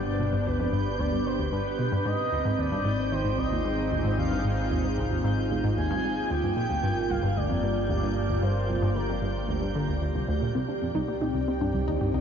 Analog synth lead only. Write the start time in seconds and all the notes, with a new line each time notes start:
Already playing: D5
0.46 B4
0.99 D5
1.26 C5
1.52 B4
2.06 D#5
2.59 D5
3.12 C5
3.38 D#5
4.18 F5
5.77 G#5
6.30 G5
7.10 F5
7.37 D5
7.90 D5
8.43 C5
8.96 A#4